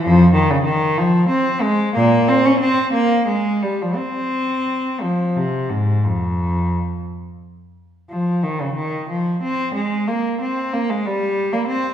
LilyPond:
\new Staff \with { instrumentName = "Cello" } { \clef bass \time 12/8 \key f \minor \tempo 4. = 61 <f, f>8 ees16 des16 ees8 f8 c'8 aes8 <bes, bes>8 c'16 des'16 c'8 bes8 aes8 g16 f16 | c'4. f8 c8 aes,8 f,4. r4. | f8 ees16 des16 ees8 f8 c'8 aes8 bes8 c'8 bes16 aes16 g8. bes16 c'8 | }